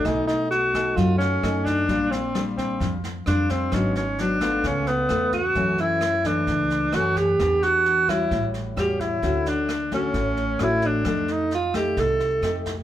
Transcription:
<<
  \new Staff \with { instrumentName = "Alto saxophone" } { \time 4/4 \key b \minor \tempo 4 = 131 dis'8 dis'8 fis'4 f'8 cis'4 d'8~ | d'8 c'4 c'4 r8 d'8 c'8 | cis'8 cis'8 d'4 cis'8 b4 fis'8~ | fis'8 e'4 d'4. fis'8 g'8~ |
g'8 fis'4 e'4 r8 g'8 e'8~ | e'8 d'4 cis'4. e'8 d'8~ | d'8 ees'8 f'8 g'8 a'4. r8 | }
  \new Staff \with { instrumentName = "Nylon-string guitar" } { \time 4/4 \key b \minor << { <a dis' gis'>4. <a dis' gis'>4. <a dis' gis'>4 | <g d' f'>8 r8 <g d' f'>4. r8 <g d' f'>4 | <fis b d'>8 r8 <fis b d'>8 <a b f'>4. <a b eis'>8 r8 | <e a cis'>4 r8 <e a>4. <e a cis'>4 |
<b d'>4. <g cis' fis'>4. <g cis' fis'>4 | <a cis' fis'>4 r8 <a cis' fis'>4. <a cis' fis'>4 | <a ees' g'>4 r8 <a ees' g'>4. <a ees' g'>8 r8 | } \\ { b,2 fis2 | bes,2 f2 | gis,2 cis2 | fis,2 r2 |
e2 a,2 | d2 a,2 | f2 c2 | } >> }
  \new Staff \with { instrumentName = "Upright bass" } { \clef bass \time 4/4 \key b \minor b,,2 fis,4 fis,4 | bes,,2 f,4 f,4 | gis,,2 cis,4 e,4 | fis,2 cis,4 fis,4 |
e,2 a,,4 e,4 | d,2 a,,4 a,,4 | r2 c,4 f,4 | }
  \new DrumStaff \with { instrumentName = "Drums" } \drummode { \time 4/4 <bd ss sn>8 sn8 sn8 <bd ss sn>8 <bd sn>8 sn8 <ss sn>8 <bd sn>8 | <bd sn>8 sn8 <ss sn>8 <bd sn>8 <bd sn>8 sn8 <ss sn>8 <bd sn>8 | <bd ss sn>8 sn8 sn8 <bd ss sn>8 <bd sn>8 sn8 <ss sn>8 <bd sn>8 | <bd sn>8 sn8 <ss sn>8 <bd sn>8 <bd sn>8 sn8 <ss sn>8 <bd sn>8 |
<bd ss sn>8 sn8 sn8 <bd ss sn>8 <bd sn>8 sn8 <ss sn>8 <bd sn>8 | <bd sn>8 sn8 <ss sn>8 <bd sn>8 <bd sn>8 sn8 <ss sn>8 <bd sn>8 | <bd ss sn>8 sn8 sn8 <bd ss sn>8 <bd sn>8 sn8 <ss sn>8 <bd sn>8 | }
>>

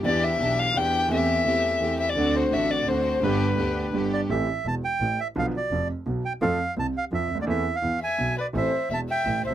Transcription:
<<
  \new Staff \with { instrumentName = "Bandoneon" } { \time 3/4 \key g \mixolydian \tempo 4 = 170 r2. | r2. | r2. | r2 r8 d''8 |
\key a \minor e''4 a''8 g''4 e''8 | f''8 d''4 r4 g''8 | f''4 a''8 f''8 e''8. d''16 | e''8. f''8. gis''4 d''8 |
e''4 a''8 g''4 e''8 | }
  \new Staff \with { instrumentName = "Violin" } { \time 3/4 \key g \mixolydian d''8 e''4 f''8 g''4 | e''2~ e''8 e''16 d''16~ | d''8 c''8 e''8 d''8 c''4 | b'2 r4 |
\key a \minor r2. | r2. | r2. | r4. e''4 b'8 |
c''4 e''8 e''4 c''8 | }
  \new Staff \with { instrumentName = "String section" } { \time 3/4 \key g \mixolydian <d' e' g'>4 <d' e' g'>4 <d' e' g'>4 | <a c' g'>4 <a c' g'>4 <a c' g'>4 | <c' d' fis'>4 <c' d' fis'>4 <c' d' fis'>4 | <b d' g'>4 <b d' g'>4 <b d' g'>4 |
\key a \minor r2. | r2. | r2. | r2. |
r2. | }
  \new Staff \with { instrumentName = "Grand piano" } { \clef bass \time 3/4 \key g \mixolydian <e, e b d' g'>4 <b,, b, e b d' g'>4 <e, e b d' g'>4 | <e, e a c' g'>4 <e, e a c' g'>4 <e, e a c' g'>4 | <d, d a c' fis'>4 <a,, a, d a c' fis'>4 <d, d a c' fis'>4 | <g,, g, d g b g'>4 <d, d g b g'>4 <g,, g, d g b g'>4 |
\key a \minor <a,, a, e a c' g'>8 r8 <e,, e,>8 r8 <a,, a,>8 r8 | <b,, b, d f b f'>8 r8 <f,, f,>8 r8 <b,, b,>8 r8 | <f, f a c' a'>8 r8 <c, c>8 r8 <f, f>8 r32 cis,32 d,32 dis,32 | <e, e a c' a'>8 r8 <e, e>8 r8 <b,, b,>8 r8 |
<a,, a, e a c' a'>8 r8 <e,, e,>8 r8 <a,, a,>8 r32 b,,32 r16 | }
  \new Staff \with { instrumentName = "Double bass" } { \clef bass \time 3/4 \key g \mixolydian e,4 b,,4 e,4 | e,4 e,4 e,4 | d,4 a,,4 d,4 | g,,4 d,4 g,,4 |
\key a \minor a,,8 r8 e,,8 r8 a,,8 r8 | b,,8 r8 f,,8 r8 b,,8 r8 | f,8 r8 c,8 r8 f,8 d,8 | e,8 r8 e,8 r8 b,,8 r8 |
a,,8 r8 e,,8 r8 a,,8 c,8 | }
>>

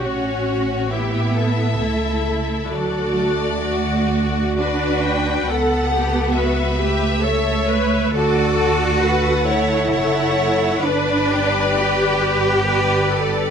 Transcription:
<<
  \new Staff \with { instrumentName = "Violin section" } { \time 3/4 \key d \major \tempo 4 = 67 cis''4 e''2 | d''2 d''8 g''8 | fis''4 e''2 | d''4 fis''4 fis''4 |
d''2 d''4 | }
  \new Staff \with { instrumentName = "Viola section" } { \time 3/4 \key d \major fis'4 e'4 e'4 | fis'4 fis'4 b'4 | a'8 g'8 fis'8 g'8 a'8 b'8 | a'4 a'2 |
b'2 b'8 a'8 | }
  \new Staff \with { instrumentName = "Violin section" } { \time 3/4 \key d \major fis'4 g'8 a'4. | a'4 fis'4 fis'4 | a'4 b'4 cis''4 | a'4 b'8 cis''8 cis''4 |
b'8 g'4. b'4 | }
  \new Staff \with { instrumentName = "Cello section" } { \time 3/4 \key d \major cis'4 b4 a4 | fis8 a4. d'4 | b4. a4. | fis'4. e'4. |
d'4 g'2 | }
  \new Staff \with { instrumentName = "Double bass section" } { \clef bass \time 3/4 \key d \major a,,2 cis,4 | d,2. | cis,2. | d,2 fis,,4 |
g,,2. | }
>>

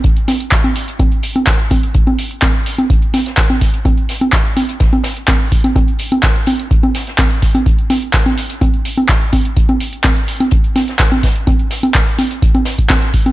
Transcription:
\new DrumStaff \with { instrumentName = "Drums" } \drummode { \time 4/4 \tempo 4 = 126 <hh bd>16 hh16 <cgho hh hho sn>16 hh16 <hc hh bd sn>16 <cgho hh>16 <hh hho>16 hh16 <cgho hh bd>16 hh16 <hh hho>16 <cgho hh>16 <hc hh bd sn>16 hh16 <cgho hh hho bd>16 hh16 | <hh bd>16 <cgho hh>16 <hh hho>16 hh16 <hc cgho hh bd sn>16 hh16 <hh hho>16 <cgho hh>16 <hh bd>16 hh16 <cgho hh hho sn>16 <hh sn>16 <hc hh bd sn>16 <cgho hh>16 <hh hho bd sn>16 hh16 | <cgho hh bd>16 hh16 <hh hho sn>16 <cgho hh>16 <hc hh bd sn>16 hh16 <cgho hh hho>16 hh16 <hh bd sn>16 <cgho hh>16 <hh hho sn>16 hh16 <hc cgho hh bd sn>16 hh16 <hh hho bd>16 <cgho hh>16 | <cgho hh bd>16 hh16 <hh hho>16 <cgho hh>16 <hc hh bd sn>16 hh16 <cgho hh hho>16 hh16 <hh bd>16 <cgho hh>16 <hh hho sn>16 <hh sn>16 <hc cgho hh bd sn>16 hh16 <hh hho bd sn>16 <cgho hh>16 |
<hh bd>16 hh16 <cgho hh hho sn>16 hh16 <hc hh bd sn>16 <cgho hh>16 <hh hho>16 hh16 <cgho hh bd>16 hh16 <hh hho>16 <cgho hh>16 <hc hh bd sn>16 hh16 <cgho hh hho bd>16 hh16 | <hh bd>16 <cgho hh>16 <hh hho>16 hh16 <hc cgho hh bd sn>16 hh16 hho16 <cgho hh>16 <hh bd>16 hh16 <cgho hh hho sn>16 <hh sn>16 <hc hh bd sn>16 <cgho hh>16 <hh hho bd sn>16 hh16 | <cgho hh bd>16 hh16 <hh hho sn>16 <cgho hh>16 <hc hh bd sn>16 hh16 <cgho hh hho>16 hh16 <hh bd>16 <cgho hh>16 <hh hho sn>16 <hh bd>16 <hc cgho hh bd sn>16 hh16 <hh hho bd>16 <cgho hh>16 | }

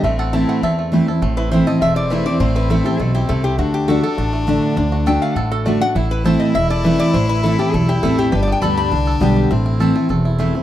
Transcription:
<<
  \new Staff \with { instrumentName = "Resonator guitar played with a steel bar" } { \time 4/4 \key a \dorian \tempo 4 = 203 e''8 fis''8 a''8 fis''8 e''4 r4 | r8 b'8 c''8 dis''8 e''8 d''8 b'8 d''8 | c''8 b'8 a'8 g'8 a'8 g'8 a'8 g'8 | fis'8 g'8 a'8 a'2~ a'8 |
r4 g''8 f''8 fis''8 a'8 d''8 fis''8 | r8 b'8 c''8 dis''8 e''8 d''8 b'8 d''8 | c''8 b'8 a'8 g'8 a'8 g'8 a'8 g'8 | \tuplet 3/2 { b'8 d''8 g''8 } b''8 b''2~ b''8 |
r1 | }
  \new Staff \with { instrumentName = "Five-string banjo" } { \time 4/4 \key a \dorian a8 a'8 e'8 a8 a'8 a8 e'8 a'8 | a8 e'8 e'8 a'8 a8 e'8 a8 e'8 | a8 e'8 e'8 a'8 a8 e'8 a8 e'8 | fis'4 fis'8 a'8 fis'8 a8 fis'8 d'8 |
d'8 fis'8 a'8 a8 a'8 fis'8 a8 d'8 | e'4 a'8 e'8 e'8 a'8 a8 e'8 | a8 e'8 e'8 a'8 a8 e'8 a8 e'8 | g'8 b8 a'8 g'8 d'8 a'8 b8 g'8 |
e'8 e'8 a'8 a8 a'8 e'8 a8 e'8 | }
  \new Staff \with { instrumentName = "Fiddle" } { \time 4/4 \key a \dorian c'2.~ c'8 r8 | c'1~ | c'1 | d'1~ |
d'2.~ d'8 r8 | e'1~ | e'1 | d'1 |
c'2.~ c'8 r8 | }
  \new Staff \with { instrumentName = "Steel-string acoustic guitar" } { \time 4/4 \key a \dorian << { r4 <e a c' e'>4 r4 <e a c' e'>8 <c' e'>8 | r4 <e a c' e'>8 <c' e'>8 r4 <e a c' e'>8 <c' e'>8 | r4 <e a c' e'>8 <c' e'>8 r2 | r4 <d a d' fis'>8 <d' fis'>8 r4 <d a d' fis'>4 |
r4 <d a d' fis'>4 r4 <d a d' fis'>8 <d' fis'>8 | r4 <e a c' e'>4 r4 <e a c' e'>4 | r4 <e a c' e'>8 <c' e'>8 r4 <e a c' e'>4 | r4 <d g b g'>4 r4 <d g b g'>4 |
r4 <e a c' e'>8 <c' e'>8 r4 <e a c' e'>8 <c' e'>8 | } \\ { a,2 e,2 | a,2 e,2 | a,2 b,4 c4 | d2 a,2 |
d2 a,2 | a,2 e,2 | a,2 e,2 | g,2 d2 |
a,2 e,2 | } >> }
  \new Staff \with { instrumentName = "Upright bass" } { \clef bass \time 4/4 \key a \dorian a,,2 e,2 | a,,2 e,,2 | a,,2 b,,4 c,4 | d,2 a,,2 |
d,2 a,,2 | a,,2 e,,2 | a,,2 b,,4 a,,4 | g,,4 d,4 c,4 b,,4 |
a,,2 e,,2 | }
>>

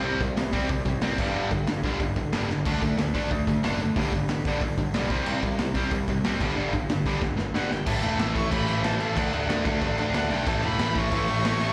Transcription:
<<
  \new Staff \with { instrumentName = "Erhu" } { \time 4/4 \key g \major \tempo 4 = 184 r1 | r1 | r1 | r1 |
r1 | r2. fis''8 g''8 | \key a \mixolydian a''4 r8 cis'''8 b''4 a''8 a''8 | fis''4 r2 fis''8 g''8 |
a''8 b''4 cis'''2~ cis'''8 | }
  \new Staff \with { instrumentName = "Distorted electric guitar" } { \clef bass \time 4/4 \key g \major <c g c'>8 <c g>8 <c g>8 <c g c'>8 <c g>8 <c g>8 <c g c'>8 <g, d g>8 | <g, d g>8 <g, d>8 <g, d>8 <g, d g>8 <g, d>8 <g, d>8 <g, d g>8 <g, d>8 | <d a d'>8 <d a>8 <d a>8 <d a d'>8 <d a>8 <d a>8 <d a d'>8 <d a>8 | <g, d g>8 <g, d>8 <g, d>8 <g, d g>8 <g, d>8 <g, d>8 <g, d g>8 <c g c'>8 |
<c g c'>8 <c g>8 <c g>8 <c g c'>8 <c g>8 <c g>8 <c g c'>8 <g, d g>8 | <g, d g>8 <g, d>8 <g, d>8 <g, d g>8 <g, d>8 <g, d>8 <g, d g>8 <g, d>8 | \key a \mixolydian <a, e a>8 <a, e a>8 <a, e a>8 <a, e a>8 <a, e a>8 <a, e a>8 <a, e a>8 <a, e a>8 | <d a d'>8 <d a d'>8 <d a d'>8 <d a d'>8 <d a d'>8 <d a d'>8 <d a d'>8 <d a d'>8 |
<a, e a>8 <a, e a>8 <a, e a>8 <a, e a>8 <a, e a>8 <a, e a>8 <a, e a>8 <a, e a>8 | }
  \new Staff \with { instrumentName = "Picked electric bass" } { \clef bass \time 4/4 \key g \major c,8 c,8 c,8 c,8 c,8 c,8 c,8 g,,8 | g,,8 g,,8 g,8 g,,8 g,,8 g,,8 g,,8 g,,8 | d,8 d,8 d,8 d,8 d,8 d,8 fis,,4 | g,,8 g,,8 g,8 g,,8 g,,8 g,,8 b,,8 c,8 |
c,8 c,8 c,8 c,8 c,8 c,8 c,8 g,,8 | g,,8 g,,8 g,8 g,,8 g,,8 g,,8 g,,8 g,,8 | \key a \mixolydian a,,8 e,,8 a,,8 a,,8 a,,8 a,,8 a,,8 a,,8 | d,8 d,8 d,8 d,8 a,,8 d,8 d,8 b,,8 |
a,,8 e,,8 a,,8 a,,8 a,,8 a,,8 a,,8 a,,8 | }
  \new DrumStaff \with { instrumentName = "Drums" } \drummode { \time 4/4 r8 <hho bd>8 <hho sn>8 <hho bd>8 <hho bd>8 <hho bd>8 <hho sn>8 <cymc bd>8 | r8 <hho bd>8 <hho sn>8 <hho bd>8 <hho bd>8 <hho bd>8 <hho sn>8 sn8 | <cymc bd>8 <hho bd>8 <hho sn>8 <hho bd>8 <hho bd>8 <hho bd>8 <hho sn>8 hho8 | <hho bd>8 <hho bd>8 <hho sn>8 <hho bd>8 <hho bd>8 <hho bd>8 <hho sn>8 <hho bd>8 |
cymc8 <hho bd>8 <hho sn>8 <hho bd>8 <hho bd>8 <hho bd>8 <hho sn>8 <cymc bd>8 | r8 <hho bd>8 <hho sn>8 <hho bd>8 <bd sn>8 sn8 sn8 sn8 | <cymc bd>8 cymc8 <cymc sn>8 <cymc bd>8 <cymc bd>8 cymc8 <cymc sn>8 cymc8 | <cymc bd>8 cymc8 <cymc sn>8 <cymc bd>8 <cymc bd>8 cymc8 <cymc sn>8 cymc8 |
<cymc bd>8 cymc8 <cymc sn>8 <cymc bd>8 <cymc bd>8 cymc8 <cymc sn>8 cymc8 | }
>>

